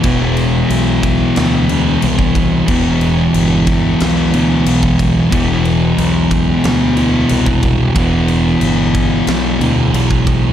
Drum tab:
CC |x-x-x-x-x-x-x-x-|x-x-x-x-x-x-x-x-|x-x-x-x-x-x-x-x-|x-x-x-x-x-x-x-x-|
SD |--------o-------|--------o-------|--------o-------|--------o-------|
BD |o-----o------oo-|o-----o------oo-|o-----o------oo-|o-----o------oo-|